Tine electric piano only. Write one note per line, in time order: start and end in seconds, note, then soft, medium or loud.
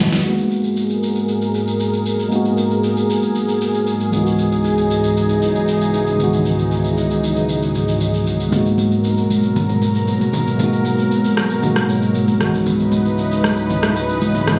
0.00 0.20 G#3 medium
0.00 0.24 B3 medium
0.00 0.25 D#4 medium
0.00 0.26 E4 medium
0.00 0.26 F#4 medium
0.21 2.26 G#3 medium
0.21 2.27 A#3 medium
0.21 2.28 B3 medium
0.27 2.29 D#4 medium
0.27 2.30 F#4 medium
2.28 4.08 G#3 medium
2.28 4.08 A#3 medium
2.28 4.09 B3 medium
2.34 4.10 D#4 medium
2.34 4.11 F#4 medium
4.10 6.14 C#2 medium
4.10 6.15 E3 medium
4.10 6.16 G#3 medium
4.14 6.16 B3 medium
4.14 6.17 D#4 medium
4.14 4.21 F4 medium
4.23 6.21 F#4 medium
6.16 8.21 C#2 medium
6.16 6.25 D#3 medium
6.16 8.22 G#3 medium
6.21 8.25 E3 medium
6.21 8.23 B3 medium
6.21 8.24 D#4 medium
6.21 8.25 F#4 medium
8.49 10.54 G#3 medium
8.49 10.55 A#3 medium
8.49 10.56 B3 medium
8.55 10.56 D#4 medium
8.55 10.57 F#4 medium
10.56 11.59 G#3 medium
10.56 11.60 A#3 medium
10.56 11.61 B3 medium
10.62 11.62 D#4 medium
10.62 11.63 F#4 medium
11.61 12.39 G#3 medium
11.61 12.40 A#3 medium
11.61 12.40 B3 medium
11.61 12.41 D#4 medium
11.61 12.42 F#4 medium
12.37 14.42 C#2 medium
12.37 14.42 E3 medium
12.37 14.43 G#3 medium
12.42 14.44 B3 medium
12.42 14.45 D#4 medium
12.42 14.45 F#4 medium
14.44 14.59 C#2 medium
14.44 14.59 E3 medium
14.44 14.59 G#3 medium
14.48 14.59 B3 medium
14.48 14.59 D#4 medium
14.48 14.56 E4 medium